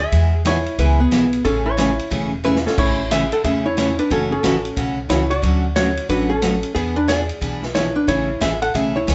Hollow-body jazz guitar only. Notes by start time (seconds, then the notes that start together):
0.00 G#4 E5
0.47 E4 C#5
0.79 E4 B4
1.00 B3 G#4
1.45 C#4 A4
1.66 E4 C#5
1.78 E4 C#5
2.45 E4 B4
2.66 C#4 A4
2.78 E4 C#5
3.12 G#4 E5
3.33 A4 F#5
3.44 G#4 E5
3.66 E4 C#5
3.78 E4 C#5
3.99 D4 B4
4.12 C#4 A4
4.32 C#4 A4
5.10 E4 C#5
5.30 F#4 D5
5.76 F#4 C#5
6.10 D4 B4
6.30 C#4 A4
6.75 B3 G#4
6.96 D4 B4
7.08 G#4 D5
7.75 E4 C#5
7.95 D4 B4
8.08 E4 C#5
8.41 G#4 E5
8.62 A4 F#5
8.75 G#4 E5
8.96 E4 C#5